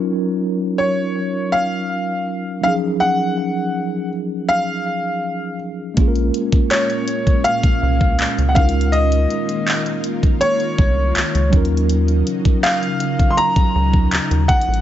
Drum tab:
HH |------------------------------------------------|------------------------------------------------|x--x--x--x--x--x--x--x--x--x--------x--x--x-x-x-|x--x--x--x--x--x--x--x--x--x--------x--x--x-x-x-|
CP |------------------------------------------------|------------------------------------------------|------------x-----------------------x-----------|------------x-----------------------x-----------|
BD |------------------------------------------------|------------------------------------------------|o--------o-----------o-----o-----o--------o-----|---------------------o--------o-----------o-----|

HH |x--x--x--x--x--x--x--x--x--x--------x--x--x-x-x-|
CP |------------x-----------------------x-----------|
BD |---------o-----------o-----o-----o--------o-----|